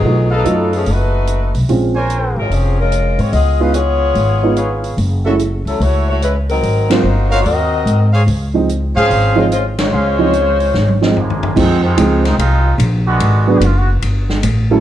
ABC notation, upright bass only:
X:1
M:4/4
L:1/8
Q:"Swing" 1/4=146
K:Db
V:1 name="Upright bass" clef=bass
_C,,2 G,,2 G,,,3 C,, | B,,,3 A,,, F,,,3 A,, | D,,4 A,,,4 | G,,,3 D,, D,,4 |
A,,,2 =G,,,2 E,,2 A,,2 | D,,3 A,, A,,,4 | D,,4 A,,,4 | F,,2 D,,2 C,,2 B,,,2 |
A,,,2 G,,,2 =G,,,2 =A,,,2 |]